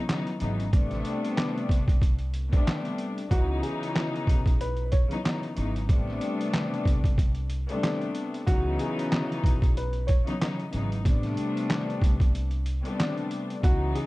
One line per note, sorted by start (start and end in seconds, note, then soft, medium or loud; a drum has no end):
0.00 0.23 C#5 medium
0.07 0.38 C#3 medium
0.07 0.38 E3 medium
0.07 0.38 F#3 medium
0.07 0.39 B3 medium
0.07 0.39 D#4 medium
0.07 snare loud
0.07 clap medium
0.07 closed hi-hat loud
0.27 closed hi-hat soft
0.39 0.70 G#1 medium
0.39 0.70 C#3 medium
0.39 0.70 E3 medium
0.39 0.71 F#3 medium
0.39 0.71 B3 medium
0.39 0.71 D#4 medium
0.39 closed hi-hat medium
0.60 closed hi-hat soft
0.72 1.02 A1 loud
0.72 2.36 C3 loud
0.72 2.36 G3 loud
0.72 2.37 A3 loud
0.72 2.37 B3 loud
0.72 2.37 D4 loud
0.72 kick loud
0.72 closed hi-hat medium
0.91 snare soft
0.91 closed hi-hat soft
1.05 closed hi-hat medium
1.25 closed hi-hat medium
1.37 snare loud
1.37 clap medium
1.37 closed hi-hat medium
1.58 closed hi-hat soft
1.69 2.48 C2 medium
1.69 kick medium
1.69 closed hi-hat medium
1.88 kick medium
1.88 closed hi-hat medium
2.02 kick medium
2.02 closed hi-hat medium
2.19 closed hi-hat soft
2.34 closed hi-hat medium
2.51 3.25 C3 medium
2.51 3.25 G3 medium
2.51 3.25 A3 medium
2.51 3.26 B3 medium
2.51 3.26 D4 loud
2.51 kick loud
2.51 closed hi-hat soft
2.67 snare loud
2.67 clap medium
2.67 closed hi-hat loud
2.85 closed hi-hat soft
2.98 closed hi-hat medium
3.18 closed hi-hat medium
3.29 3.60 C#2 loud
3.29 4.94 C#3 loud
3.29 4.94 E3 loud
3.29 4.94 F#3 medium
3.29 4.95 B3 loud
3.29 4.95 D#4 loud
3.29 3.60 F#4 loud
3.29 kick loud
3.29 closed hi-hat medium
3.62 4.56 G#4 medium
3.62 closed hi-hat medium
3.83 closed hi-hat medium
3.96 snare loud
3.96 clap medium
3.96 closed hi-hat medium
4.16 closed hi-hat soft
4.27 5.06 B1 medium
4.27 kick medium
4.27 closed hi-hat medium
4.46 kick medium
4.46 closed hi-hat medium
4.61 4.89 B4 medium
4.61 closed hi-hat medium
4.77 closed hi-hat soft
4.92 5.39 C#5 medium
4.92 kick medium
4.92 closed hi-hat medium
5.09 5.22 C#3 medium
5.09 5.22 E3 medium
5.09 5.23 F#3 medium
5.09 5.24 B3 medium
5.09 5.25 D#4 loud
5.09 closed hi-hat soft
5.23 5.54 C#3 medium
5.23 5.54 E3 medium
5.23 5.54 F#3 medium
5.23 5.55 B3 medium
5.23 5.55 D#4 medium
5.23 snare loud
5.23 clap medium
5.23 closed hi-hat loud
5.43 closed hi-hat soft
5.55 5.86 G#1 medium
5.55 5.86 C#3 medium
5.55 5.86 E3 medium
5.55 5.87 F#3 medium
5.55 5.87 B3 medium
5.55 5.87 D#4 medium
5.55 closed hi-hat medium
5.76 closed hi-hat medium
5.88 6.18 A1 loud
5.88 7.52 C3 loud
5.88 7.52 G3 loud
5.88 7.53 A3 loud
5.88 7.53 B3 medium
5.88 7.53 D4 loud
5.88 kick loud
5.88 closed hi-hat medium
6.08 snare soft
6.21 closed hi-hat medium
6.41 closed hi-hat medium
6.53 snare loud
6.53 clap medium
6.53 closed hi-hat medium
6.74 closed hi-hat soft
6.85 7.64 C2 medium
6.85 kick medium
6.85 closed hi-hat medium
7.04 kick medium
7.04 closed hi-hat medium
7.18 kick medium
7.18 closed hi-hat medium
7.35 closed hi-hat soft
7.50 closed hi-hat medium
7.67 8.41 C3 medium
7.67 8.41 G3 medium
7.67 8.42 A3 medium
7.67 8.42 B3 medium
7.67 8.42 D4 loud
7.67 closed hi-hat soft
7.83 snare loud
7.83 clap medium
7.83 closed hi-hat loud
8.02 closed hi-hat soft
8.15 closed hi-hat medium
8.34 closed hi-hat medium
8.46 8.76 C#2 loud
8.46 10.10 C#3 loud
8.46 10.10 E3 loud
8.46 10.11 F#3 medium
8.46 10.11 B3 loud
8.46 10.11 D#4 loud
8.46 8.76 F#4 loud
8.46 kick loud
8.46 closed hi-hat medium
8.79 9.73 G#4 medium
8.79 closed hi-hat medium
8.99 closed hi-hat medium
9.12 snare loud
9.12 clap medium
9.12 closed hi-hat medium
9.32 closed hi-hat soft
9.44 10.22 B1 medium
9.44 kick medium
9.44 closed hi-hat medium
9.62 kick medium
9.62 closed hi-hat medium
9.77 10.06 B4 medium
9.77 closed hi-hat medium
9.93 closed hi-hat soft
10.07 10.55 C#5 medium
10.07 kick medium
10.07 closed hi-hat medium
10.25 10.38 C#3 medium
10.25 10.39 E3 medium
10.25 10.40 F#3 medium
10.25 10.40 B3 medium
10.25 10.41 D#4 loud
10.25 closed hi-hat soft
10.39 10.70 C#3 medium
10.39 10.70 E3 medium
10.39 10.71 F#3 medium
10.39 10.71 B3 medium
10.39 10.71 D#4 medium
10.39 snare loud
10.39 clap medium
10.39 closed hi-hat loud
10.60 closed hi-hat soft
10.71 11.02 G#1 medium
10.71 11.02 C#3 medium
10.71 11.02 E3 medium
10.71 11.03 F#3 medium
10.71 11.03 B3 medium
10.71 11.04 D#4 medium
10.71 closed hi-hat medium
10.92 closed hi-hat soft
11.04 11.34 A1 loud
11.04 12.68 C3 loud
11.04 12.69 G3 loud
11.04 12.69 A3 loud
11.04 12.69 B3 medium
11.04 12.70 D4 loud
11.04 kick loud
11.04 closed hi-hat medium
11.23 snare soft
11.23 closed hi-hat soft
11.37 closed hi-hat medium
11.57 closed hi-hat medium
11.70 snare loud
11.70 clap medium
11.70 closed hi-hat medium
11.90 closed hi-hat soft
12.02 12.80 C2 medium
12.02 kick medium
12.02 closed hi-hat medium
12.20 kick medium
12.20 closed hi-hat medium
12.35 closed hi-hat medium
12.51 closed hi-hat soft
12.66 closed hi-hat medium
12.83 13.57 C3 medium
12.83 13.57 G3 medium
12.83 13.58 A3 medium
12.83 13.58 B3 medium
12.83 13.59 D4 loud
12.83 closed hi-hat soft
13.00 snare loud
13.00 clap medium
13.00 closed hi-hat loud
13.18 closed hi-hat soft
13.31 closed hi-hat medium
13.50 closed hi-hat soft
13.62 13.92 C#2 loud
13.62 14.06 C#3 loud
13.62 14.06 E3 loud
13.62 14.06 F#3 medium
13.62 14.06 B3 loud
13.62 14.06 D#4 loud
13.62 13.93 F#4 loud
13.62 kick loud
13.62 closed hi-hat medium
13.95 14.06 G#4 medium
13.95 closed hi-hat medium